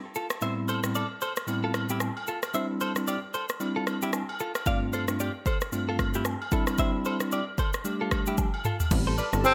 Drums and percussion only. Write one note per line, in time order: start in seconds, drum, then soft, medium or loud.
0.15 shaker medium
0.30 cross-stick medium
0.30 shaker medium
0.41 shaker medium
0.68 high agogo medium
0.68 shaker medium
0.84 cross-stick medium
0.84 shaker medium
0.95 high agogo medium
0.95 shaker medium
1.21 high agogo medium
1.21 shaker medium
1.36 cross-stick medium
1.36 shaker medium
1.48 high agogo medium
1.48 shaker medium
1.74 cross-stick medium
1.74 high agogo medium
1.74 shaker soft
1.89 shaker medium
2.00 cross-stick medium
2.00 low woodblock medium
2.00 shaker medium
2.17 high agogo medium
2.27 shaker medium
2.43 cross-stick medium
2.43 high agogo medium
2.43 shaker medium
2.54 shaker medium
2.81 high agogo medium
2.81 shaker medium
2.96 cross-stick medium
2.96 shaker medium
3.07 high agogo medium
3.07 shaker medium
3.34 high agogo medium
3.34 shaker medium
3.49 cross-stick medium
3.49 shaker medium
3.60 high agogo medium
3.60 shaker medium
3.87 cross-stick medium
3.87 high agogo medium
3.87 shaker soft
4.02 shaker medium
4.13 cross-stick medium
4.13 low woodblock medium
4.13 shaker medium
4.29 high agogo medium
4.40 shaker medium
4.55 cross-stick medium
4.55 high agogo medium
4.55 shaker medium
4.66 kick loud
4.66 shaker medium
4.93 high agogo medium
4.93 shaker medium
5.08 cross-stick medium
5.08 shaker medium
5.20 high agogo medium
5.20 shaker medium
5.46 kick medium
5.46 high agogo medium
5.46 shaker medium
5.61 cross-stick medium
5.61 shaker medium
5.72 high agogo medium
5.72 shaker medium
5.99 kick medium
5.99 cross-stick medium
5.99 high agogo medium
5.99 shaker soft
6.14 shaker medium
6.25 cross-stick medium
6.25 low woodblock medium
6.25 shaker medium
6.42 high agogo medium
6.51 kick medium
6.51 shaker medium
6.67 cross-stick medium
6.67 high agogo medium
6.67 shaker medium
6.78 kick loud
6.78 shaker medium
7.05 high agogo medium
7.05 shaker medium
7.20 cross-stick medium
7.20 shaker medium
7.32 high agogo medium
7.32 shaker medium
7.58 kick medium
7.58 high agogo medium
7.58 shaker medium
7.73 cross-stick medium
7.73 shaker medium
7.85 high agogo medium
7.85 shaker medium
8.11 kick medium
8.11 cross-stick loud
8.11 high agogo medium
8.11 shaker soft
8.26 shaker medium
8.38 kick medium
8.38 high tom soft
8.38 low woodblock medium
8.38 shaker medium
8.54 high agogo medium
8.65 mid tom medium
8.65 shaker medium
8.80 floor tom medium
8.80 high agogo medium
8.80 shaker medium
8.91 kick loud
8.91 crash medium
8.91 shaker medium
9.18 high agogo medium
9.18 shaker medium
9.33 cross-stick medium
9.33 shaker medium
9.44 high agogo medium
9.44 low woodblock medium
9.44 shaker medium